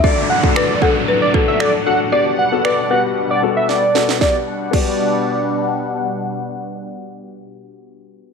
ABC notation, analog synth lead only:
X:1
M:4/4
L:1/16
Q:1/4=115
K:G
V:1 name="Analog synth lead"
d2 f2 d2 f z2 d z e d z f z | d2 f2 d2 f z2 d z e d3 z | d2 z2 d8 z4 | z16 |]